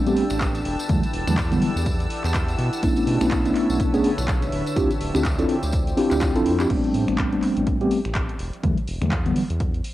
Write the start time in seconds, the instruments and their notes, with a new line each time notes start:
Already playing: analog synth bass A1, ambient pad D4 A4 B4 G5 A5, string machine E6
0.06 tine electric piano G3 A3 B3 C4 G4, closed hi-hat, tambourine
0.16 open hi-hat
0.30 analog synth bass A1, finger snap, closed hi-hat, tambourine
0.41 kick, clap, closed hi-hat, tambourine
0.55 closed hi-hat, tambourine
0.65 analog synth bass E1, ambient pad E4 G4 D5 F#5, open hi-hat
0.79 closed hi-hat, tambourine
0.89 analog synth bass E2, tine electric piano D3 E3 F#3 G3 A3, kick, closed hi-hat, tambourine
1.03 closed hi-hat, tambourine
1.13 analog synth bass E1, open hi-hat
1.27 analog synth bass E2, tine electric piano D3 E3 F#3 G3 A3, finger snap, tambourine
1.38 kick, clap, closed hi-hat, tambourine
1.51 tine electric piano D3 E3 F#3 G3 B3, closed hi-hat, tambourine
1.62 open hi-hat
1.76 analog synth bass E2, tambourine
1.86 kick, closed hi-hat, tambourine
2.00 closed hi-hat, tambourine
2.10 open hi-hat
2.24 analog synth bass E2, clap, closed hi-hat, tambourine
2.34 kick, clap, closed hi-hat, tambourine
2.49 closed hi-hat, tambourine
2.59 analog synth bass B2, ambient pad D3 B4 C#5 E5, open hi-hat
2.73 closed hi-hat, tambourine
2.83 analog synth bass B1, tine electric piano A3 B3 C#4 D4 E4, kick, closed hi-hat, tambourine
2.96 closed hi-hat, tambourine
3.07 analog synth bass B2, open hi-hat
3.21 analog synth bass B1, tine electric piano A3 B3 C#4 D4 E4, finger snap, tambourine
3.31 kick, clap, closed hi-hat, tambourine
3.45 tine electric piano A3 B3 C#4 D4 E4, closed hi-hat, tambourine
3.55 clap, open hi-hat
3.69 analog synth bass B1, tambourine
3.80 kick, closed hi-hat, tambourine
3.94 tine electric piano A3 B3 C#4 D4 G#4, closed hi-hat, tambourine
4.04 open hi-hat
4.18 analog synth bass B1, finger snap, closed hi-hat, tambourine
4.28 kick, clap, closed hi-hat, tambourine
4.42 closed hi-hat, tambourine
4.52 analog synth bass D1, ambient pad F3 C5 D5 G5, open hi-hat
4.66 closed hi-hat, tambourine
4.76 analog synth bass D2, tine electric piano C4 D4 E4 F4 G4, kick, closed hi-hat, tambourine
4.91 closed hi-hat, tambourine
5.01 analog synth bass D1, open hi-hat
5.14 analog synth bass D2, tine electric piano C4 D4 E4 F4 G4, finger snap, closed hi-hat, tambourine
5.25 kick, clap, closed hi-hat, tambourine
5.38 tine electric piano C4 D4 E4 F4 A4, closed hi-hat, tambourine
5.49 open hi-hat
5.63 analog synth bass D2, closed hi-hat, tambourine
5.73 kick, closed hi-hat, tambourine
5.87 closed hi-hat, tambourine
5.97 tine electric piano C4 D4 E4 F4 G4, open hi-hat
6.11 analog synth bass D2, clap, closed hi-hat, tambourine
6.21 kick, clap, closed hi-hat, tambourine
6.35 analog synth bass D1, tine electric piano C4 D4 E4 F4 A4, closed hi-hat, tambourine
6.46 analog synth bass F2, open hi-hat
6.59 tine electric piano C4 D4 E4 F4 G4, clap, tambourine
6.70 analog synth bass A1, tine electric piano G3 A3 B3 C4 D4, kick, closed hi-hat, crash
6.84 closed hi-hat
6.94 analog synth bass A2, open hi-hat
7.08 analog synth bass A1, tine electric piano G3 A3 B3 C4 D4, finger snap, closed hi-hat
7.18 kick, clap, closed hi-hat
7.32 tine electric piano G3 A3 B3 C4 D4, closed hi-hat
7.42 clap, open hi-hat
7.57 analog synth bass A1, closed hi-hat
7.67 kick, closed hi-hat
7.81 tine electric piano G3 A3 B3 C4 G4, closed hi-hat
7.91 open hi-hat
8.05 analog synth bass A1, finger snap, closed hi-hat
8.15 kick, clap, closed hi-hat
8.29 closed hi-hat
8.39 analog synth bass E1, open hi-hat
8.53 closed hi-hat
8.63 analog synth bass E2, tine electric piano D3 E3 F#3 G3 A3, kick, closed hi-hat
8.78 closed hi-hat
8.88 analog synth bass E1, open hi-hat
9.01 analog synth bass E2, tine electric piano D3 E3 F#3 G3 A3, finger snap, closed hi-hat
9.12 kick, clap, closed hi-hat
9.25 tine electric piano D3 E3 F#3 G3 B3, closed hi-hat
9.36 open hi-hat
9.50 analog synth bass E2, closed hi-hat
9.60 kick, closed hi-hat
9.74 closed hi-hat
9.84 open hi-hat